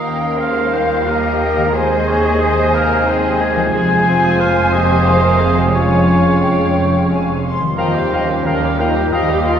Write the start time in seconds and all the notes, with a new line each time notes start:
Already playing: D#2 D#3 F3 A#3 F4 A#4 D#5 F5
0.06 C#4 G5
0.40 G#3 C5 F5
0.74 G3 D#4 G5
1.07 A#3 G4 A#4 D#5
1.42 A#4
1.57 D#3
1.61 G#3
1.66 D#4
1.70 G#4 C5 C6
1.74 C3 G#3 C5 D#5 G#5
2.07 C3 C#5
2.40 C5 D#5
2.74 A#4 F5
3.07 C4 D#4 G#4 G5
3.41 A#3 G#5
3.56 F3
3.61 G#3
3.65 F4
3.69 F1 G#4 C5 G#5
3.74 F2 G#3 C5 G#5
4.07 C4 F4
4.39 A#3 C5 F5
4.72 G4 D#5
5.06 G#4 C5 F5 G#5
5.26 A#4
5.39 G#4
5.56 F3 G4
5.60 G#3
5.65 G#4
5.69 C#5
5.74 G#3 C#4 F4 C#5 F5 G#5
6.42 G5
7.10 G#5
7.44 C6
7.60 D#3
7.65 G3
7.69 F4
7.74 D#2 A#4 C5
7.78 D#2 F3 G3 F4 D#5 F5 G5
7.95 G3 G4 F5
8.12 F3 C#4 A#4 D#5 F5 G5
8.29 G3 G4 F5
8.45 D#2 F3 A#4 D#5 F5 G5
8.63 G3 G4 F5
8.79 F3 D#4 A#4 D#5 F5 G5
8.95 G3 G4 F5
9.12 D#2 F3 G4 A#4 D#5 F5 G5
9.30 G3 G4 F5
9.45 F3 F4 A#4 D#5 F5 G5